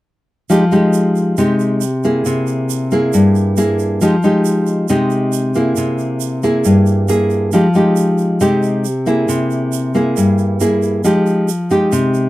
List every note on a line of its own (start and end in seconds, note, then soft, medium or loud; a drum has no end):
0.50 1.36 F3 medium
0.50 0.63 G#3 soft
0.50 0.63 D#4 soft
0.50 0.64 G4 soft
0.50 shaker medium
0.72 1.35 G#3 medium
0.72 1.35 D#4 medium
0.72 1.35 G4 medium
0.72 shaker soft
0.93 shaker medium
1.16 shaker soft
1.37 2.24 C3 medium
1.37 1.82 G#3 medium
1.37 1.82 D#4 medium
1.37 1.82 G4 medium
1.37 shaker medium
1.60 shaker soft
1.81 shaker medium
2.04 2.89 A#3 soft
2.04 2.89 E4 soft
2.04 2.89 G#4 medium
2.04 shaker soft
2.25 3.12 C3 medium
2.25 shaker medium
2.47 shaker soft
2.70 shaker medium
2.91 3.54 A#3 medium
2.91 3.54 E4 medium
2.91 3.55 G#4 medium
2.91 shaker soft
3.13 3.99 G2 medium
3.13 shaker medium
3.35 shaker soft
3.57 4.00 A#3 medium
3.57 4.00 E4 soft
3.57 4.00 G#4 medium
3.57 shaker medium
3.79 shaker soft
4.01 4.87 F3 medium
4.01 4.15 G#3 medium
4.01 4.15 D#4 soft
4.01 4.15 G4 soft
4.01 shaker medium
4.23 4.86 G#3 soft
4.23 4.86 D#4 medium
4.23 4.87 G4 medium
4.23 shaker soft
4.45 shaker medium
4.67 shaker soft
4.88 5.75 C3 medium
4.88 5.52 G#3 medium
4.88 5.52 D#4 medium
4.88 5.52 G4 medium
4.88 shaker medium
5.10 shaker soft
5.33 shaker medium
5.55 6.40 A#3 soft
5.55 6.40 E4 soft
5.55 6.40 G#4 medium
5.55 shaker soft
5.76 6.63 C3 medium
5.76 shaker medium
5.98 shaker soft
6.20 shaker medium
6.43 7.06 A#3 medium
6.43 7.06 E4 medium
6.43 7.06 G#4 medium
6.43 shaker soft
6.65 7.51 G2 medium
6.65 shaker medium
6.86 shaker soft
7.08 7.51 A#3 soft
7.08 7.51 E4 soft
7.08 7.51 G#4 medium
7.08 shaker medium
7.30 shaker soft
7.52 8.39 F3 medium
7.52 7.66 G#3 soft
7.52 7.66 D#4 soft
7.52 7.66 G4 soft
7.52 shaker medium
7.74 8.37 G#3 medium
7.74 8.38 D#4 soft
7.74 8.38 G4 medium
7.74 shaker soft
7.96 shaker medium
8.18 shaker soft
8.41 9.26 C3 medium
8.41 8.84 G#3 medium
8.41 8.85 D#4 medium
8.41 8.85 G4 medium
8.41 shaker medium
8.63 shaker soft
8.85 shaker medium
9.06 9.91 A#3 soft
9.06 9.91 E4 medium
9.06 9.92 G#4 medium
9.06 shaker soft
9.29 10.14 C3 medium
9.29 shaker medium
9.51 shaker soft
9.72 shaker medium
9.94 10.57 A#3 medium
9.94 10.57 E4 medium
9.94 10.58 G#4 medium
9.94 shaker soft
10.17 11.03 G2 medium
10.17 shaker medium
10.39 shaker soft
10.60 11.03 A#3 medium
10.60 11.03 E4 soft
10.60 11.03 G#4 medium
10.60 shaker medium
10.83 shaker soft
11.04 11.90 F3 medium
11.04 11.48 G#3 soft
11.04 11.48 D#4 soft
11.04 11.49 G4 medium
11.04 shaker medium
11.26 shaker soft
11.48 shaker medium
11.70 12.29 G#3 medium
11.70 12.29 D#4 medium
11.70 12.29 G4 medium
11.70 shaker soft
11.92 12.29 C3 medium
11.92 shaker medium
12.14 shaker soft